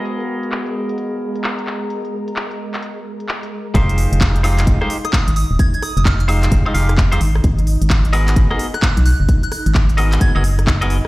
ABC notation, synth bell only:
X:1
M:4/4
L:1/16
Q:"Swing 16ths" 1/4=130
K:Fm
V:1 name="Synth bell"
z16 | z16 | z8 z3 e' e' z e' z | a' a' e' e' f' f' z8 z2 |
z8 z3 _g' g' z g' z | z _g' g' z4 z a' a' z6 |]